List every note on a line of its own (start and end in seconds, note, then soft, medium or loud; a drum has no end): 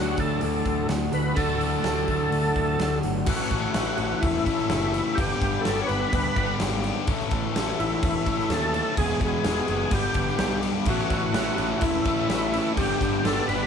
0.00 0.13 D2 medium
0.00 1.34 D3 medium
0.00 1.35 F#3 medium
0.00 1.36 A3 loud
0.00 1.36 D4 medium
0.00 3.25 D4 medium
0.00 3.25 E4 medium
0.00 0.20 F#4 medium
0.00 1.37 F#4 medium
0.00 3.25 F#4 medium
0.00 1.39 A4 loud
0.00 3.24 A4 medium
0.17 0.36 D2 medium
0.17 0.41 A4 medium
0.17 kick medium
0.17 open hi-hat medium
0.41 0.60 D2 loud
0.41 0.87 A4 medium
0.41 open hi-hat medium
0.66 0.84 D2 medium
0.66 kick medium
0.66 open hi-hat medium
0.89 1.07 D2 loud
0.89 snare loud
0.89 open hi-hat medium
1.12 1.31 D2 medium
1.12 1.38 B4 medium
1.12 open hi-hat medium
1.36 1.74 D2 loud
1.36 3.25 D3 medium
1.36 3.26 F#3 medium
1.36 3.26 A3 medium
1.36 3.26 D4 medium
1.36 3.27 F#4 loud
1.36 2.99 A4 loud
1.36 3.27 A4 loud
1.36 kick loud
1.36 open hi-hat medium
1.61 open hi-hat medium
1.84 2.03 D2 medium
1.84 snare loud
1.84 open hi-hat medium
2.08 2.27 D2 medium
2.08 kick medium
2.08 open hi-hat medium
2.31 2.50 D2 loud
2.31 open hi-hat medium
2.56 2.75 D2 medium
2.56 kick medium
2.56 open hi-hat medium
2.79 2.99 D2 medium
2.79 snare loud
2.79 open hi-hat medium
3.03 3.22 G1 medium
3.03 open hi-hat medium
3.26 3.42 A1 medium
3.26 3.75 A2 medium
3.26 3.73 E3 medium
3.26 3.53 A3 loud
3.26 3.51 C#4 loud
3.26 4.25 F#4 medium
3.26 kick loud
3.26 crash loud
3.26 crash medium
3.30 5.17 A3 medium
3.30 5.18 C#4 medium
3.30 5.17 E4 medium
3.30 3.49 A4 loud
3.30 5.18 A4 medium
3.39 snare soft
3.51 3.66 A1 medium
3.51 3.75 A3 medium
3.51 3.76 C#4 medium
3.51 3.77 A4 medium
3.51 kick medium
3.51 crash medium
3.74 3.90 A1 medium
3.74 4.70 E3 medium
3.74 4.48 A3 medium
3.74 4.46 C#4 medium
3.74 4.44 A4 medium
3.74 snare loud
3.74 crash medium
3.98 4.14 A1 medium
3.98 crash medium
4.21 4.38 E1 medium
4.21 5.19 E4 medium
4.21 kick loud
4.21 crash medium
4.45 4.61 A1 medium
4.45 4.71 A3 medium
4.45 4.70 C#4 medium
4.45 4.72 A4 medium
4.45 kick medium
4.45 crash medium
4.58 snare soft
4.69 4.99 F#1 medium
4.69 5.16 A2 loud
4.69 5.17 E3 loud
4.69 4.96 A3 medium
4.69 4.95 C#4 loud
4.69 4.93 A4 loud
4.69 snare loud
4.69 crash medium
4.94 5.18 A3 medium
4.94 5.17 C#4 medium
4.94 5.16 A4 medium
4.94 crash medium
5.15 5.33 G1 loud
5.15 5.64 G2 medium
5.15 5.65 D3 medium
5.15 5.44 G3 loud
5.15 7.06 B3 medium
5.15 5.43 B3 loud
5.15 7.05 D4 medium
5.15 5.65 G4 loud
5.15 7.06 G4 medium
5.15 7.05 B4 medium
5.15 kick loud
5.15 crash medium
5.19 5.42 D4 loud
5.19 5.40 G4 loud
5.30 snare soft
5.41 5.56 G1 medium
5.41 5.65 B3 medium
5.41 5.67 D4 medium
5.41 5.68 G4 medium
5.41 kick loud
5.41 crash medium
5.46 5.64 G3 medium
5.61 6.39 G3 medium
5.61 5.81 A4 loud
5.61 snare loud
5.61 crash medium
5.66 5.80 G1 medium
5.66 6.38 B3 medium
5.66 6.36 D4 medium
5.66 6.35 G4 medium
5.81 5.89 C#5 medium
5.87 6.04 G1 medium
5.87 6.55 B4 loud
5.87 crash medium
6.12 6.27 D2 loud
6.12 kick loud
6.12 crash medium
6.36 6.52 G1 medium
6.36 6.60 G3 medium
6.36 6.60 B3 medium
6.36 6.61 D4 medium
6.36 6.61 G4 medium
6.36 kick medium
6.36 crash medium
6.59 6.91 G#1 loud
6.59 7.05 G2 medium
6.59 7.06 D3 loud
6.59 6.86 G3 loud
6.59 6.84 B3 loud
6.59 6.84 D4 loud
6.59 6.82 G4 loud
6.59 snare loud
6.59 crash medium
6.83 7.06 G3 medium
6.83 7.07 B3 medium
6.83 7.07 D4 medium
6.83 7.06 G4 medium
6.83 crash medium
7.06 7.23 A1 loud
7.06 7.54 A2 medium
7.06 7.52 E3 medium
7.06 7.32 A3 loud
7.06 8.95 A3 medium
7.06 8.95 C#4 medium
7.06 7.30 C#4 medium
7.06 8.96 E4 medium
7.06 8.96 A4 medium
7.06 7.28 A4 loud
7.06 kick loud
7.06 crash medium
7.20 snare soft
7.29 7.47 A1 medium
7.29 7.53 A3 medium
7.29 7.54 C#4 medium
7.29 7.55 A4 medium
7.29 kick loud
7.29 crash medium
7.53 7.71 A1 medium
7.53 8.49 E3 medium
7.53 8.28 A3 medium
7.53 8.26 C#4 medium
7.53 8.25 A4 medium
7.53 snare loud
7.53 crash medium
7.79 7.94 A1 loud
7.79 8.03 E4 medium
7.79 crash medium
8.03 8.18 E1 loud
8.03 8.52 E4 medium
8.03 kick loud
8.03 crash medium
8.26 8.42 A1 medium
8.26 8.52 A3 medium
8.26 8.52 C#4 medium
8.26 8.54 A4 medium
8.26 kick medium
8.26 crash medium
8.39 snare soft
8.49 8.79 D#2 loud
8.49 8.96 A2 medium
8.49 8.97 E3 loud
8.49 8.77 A3 loud
8.49 8.95 A4 loud
8.49 snare loud
8.49 crash medium
8.54 8.75 C#4 loud
8.54 8.73 A4 loud
8.74 8.98 A3 medium
8.74 8.97 C#4 medium
8.74 8.96 A4 medium
8.74 crash medium
8.97 9.12 E1 loud
8.97 9.45 E2 loud
8.97 9.46 B2 loud
8.97 9.23 E3 loud
8.97 9.91 G#3 medium
8.97 9.90 B3 medium
8.97 9.91 E4 medium
8.97 9.91 G#4 medium
8.97 9.20 G#4 loud
8.97 kick loud
8.97 crash loud
9.01 9.23 G#3 medium
9.01 9.22 B3 loud
9.01 9.20 G#4 loud
9.21 9.36 E1 medium
9.21 9.44 E3 medium
9.21 9.45 G#3 medium
9.21 9.47 B3 medium
9.21 9.48 G#4 medium
9.21 9.46 G#4 loud
9.21 kick medium
9.21 crash medium
9.44 9.59 E1 medium
9.44 9.91 E3 medium
9.44 9.91 G#3 medium
9.44 9.95 G#4 medium
9.44 snare loud
9.44 crash medium
9.48 9.90 B3 medium
9.48 9.93 G#4 medium
9.68 9.84 F#1 medium
9.68 crash medium
9.90 10.07 G1 medium
9.90 10.36 G2 loud
9.90 10.38 D3 medium
9.90 10.86 G3 medium
9.90 10.17 G3 loud
9.90 10.86 B3 medium
9.90 10.16 B3 loud
9.90 10.86 D4 medium
9.90 10.15 D4 loud
9.90 10.86 G4 medium
9.90 10.13 G4 loud
9.90 kick loud
9.90 crash medium
9.95 10.61 G4 medium
10.14 10.30 G1 medium
10.14 10.38 G3 medium
10.14 10.39 B3 medium
10.14 10.39 D4 medium
10.14 10.40 G4 medium
10.14 kick medium
10.14 crash medium
10.27 snare soft
10.38 10.69 B1 loud
10.38 10.85 G2 loud
10.38 10.85 D3 medium
10.38 10.63 G3 medium
10.38 10.63 B3 loud
10.38 10.62 D4 loud
10.38 10.60 G4 loud
10.38 snare loud
10.38 crash medium
10.61 10.86 G3 medium
10.61 10.86 B3 medium
10.61 10.85 D4 medium
10.61 10.84 G4 medium
10.61 crash medium
10.85 11.01 A1 loud
10.85 11.34 A2 medium
10.85 11.32 E3 loud
10.85 11.12 A3 loud
10.85 12.76 A3 medium
10.85 12.75 C#4 medium
10.85 11.11 C#4 loud
10.85 12.76 E4 medium
10.85 11.09 E4 loud
10.85 11.09 A4 loud
10.85 12.76 A4 medium
10.85 kick loud
10.85 crash medium
10.90 11.73 F#4 loud
10.99 snare soft
11.10 11.26 A1 medium
11.10 11.34 A3 medium
11.10 11.35 C#4 medium
11.10 11.35 E4 medium
11.10 11.36 A4 medium
11.10 kick loud
11.10 crash medium
11.33 11.48 A1 medium
11.33 12.28 E3 medium
11.33 12.08 A3 medium
11.33 12.06 C#4 medium
11.33 11.56 E4 medium
11.33 12.04 A4 medium
11.33 snare loud
11.33 crash medium
11.57 11.73 A1 loud
11.57 12.06 A2 medium
11.57 11.78 E3 medium
11.57 11.80 A3 medium
11.57 11.81 C#4 loud
11.57 11.81 E4 loud
11.57 crash medium
11.76 12.05 E3 medium
11.76 11.83 F#4 medium
11.81 11.97 E1 loud
11.81 12.04 A3 medium
11.81 12.03 C#4 medium
11.81 12.73 E4 medium
11.81 12.02 E4 medium
11.81 kick loud
11.81 crash medium
12.03 12.21 A1 medium
12.03 12.54 A2 medium
12.03 12.27 E3 medium
12.03 12.30 E4 loud
12.03 12.31 A4 medium
12.03 kick loud
12.03 crash medium
12.08 12.30 A3 medium
12.08 12.30 C#4 medium
12.28 12.59 A1 loud
12.28 12.75 A2 loud
12.28 12.76 E3 loud
12.28 12.55 A3 loud
12.28 12.54 C#4 loud
12.28 12.53 E4 medium
12.28 snare loud
12.28 crash medium
12.33 12.52 A4 loud
12.53 12.77 A3 medium
12.53 12.76 C#4 medium
12.53 12.76 E4 medium
12.53 12.75 A4 medium
12.53 crash medium
12.76 12.92 G1 loud
12.76 13.24 G2 medium
12.76 13.25 D3 loud
12.76 13.03 G3 loud
12.76 13.02 B3 loud
12.76 12.92 C4 medium
12.76 13.01 D4 loud
12.76 12.93 D#4 medium
12.76 13.26 G4 loud
12.76 12.92 C5 medium
12.76 kick loud
12.76 crash loud
12.80 13.00 G4 loud
12.92 13.67 B3 medium
12.92 13.67 D4 medium
12.92 13.67 G4 medium
12.92 13.67 B4 medium
13.01 13.16 G1 medium
13.01 13.22 G3 medium
13.01 13.24 B3 medium
13.01 13.25 D4 medium
13.01 13.26 G4 medium
13.01 kick medium
13.01 crash medium
13.23 13.39 G1 medium
13.23 13.50 D3 medium
13.23 13.67 G3 medium
13.23 13.67 B3 medium
13.23 13.67 D4 medium
13.23 13.67 G4 medium
13.23 13.46 A4 loud
13.23 snare loud
13.23 crash medium
13.48 13.63 G1 medium
13.48 13.67 G2 medium
13.48 13.67 D3 medium
13.48 13.67 G3 medium
13.48 13.67 B3 medium
13.48 13.67 D4 loud
13.48 13.67 B4 medium
13.48 crash medium